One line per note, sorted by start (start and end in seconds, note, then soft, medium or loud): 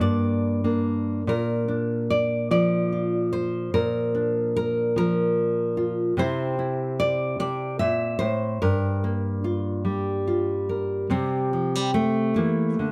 0.00 1.26 G2 medium
0.00 0.63 A#3 medium
0.00 0.63 D4 soft
0.00 1.26 D5 medium
0.64 1.21 A#3 medium
0.64 1.67 D4 soft
1.27 3.69 A#2 medium
1.27 2.10 A#4 medium
1.68 4.14 D4 soft
2.10 2.50 D5 medium
2.51 4.95 F3 medium
2.51 3.32 D5 medium
2.92 3.69 F4 soft
3.33 3.73 C5 medium
3.74 6.12 A#2 medium
3.74 4.55 A#4 medium
4.15 6.18 D4 soft
4.56 4.96 A#4 medium
4.96 6.17 F3 medium
4.96 6.18 A#4 medium
5.77 6.12 F4 soft
6.17 7.38 C3 medium
6.17 8.57 C4 medium
6.17 6.57 E4 medium
6.17 7.80 C5 loud
6.59 8.57 E4 medium
7.00 7.38 D5 loud
7.39 7.80 C3 medium
7.39 7.79 D5 loud
7.79 8.20 A#2 medium
7.79 8.61 E5 loud
8.19 8.61 A2 medium
8.19 8.60 C5 loud
8.62 11.12 G2 medium
8.62 10.68 A#4 medium
9.04 11.11 A#3 soft
9.44 10.26 F4 soft
9.85 11.06 G3 medium
10.27 11.06 F4 soft
10.69 11.06 A#4 soft
11.10 12.37 C3 medium
11.10 11.53 G3 soft
11.10 12.36 C4 medium
11.53 11.75 F3 soft
11.75 11.94 G3 soft
11.94 12.92 A3 medium
12.36 12.79 E3 medium
12.36 12.92 A#3 medium
12.79 12.92 D3 medium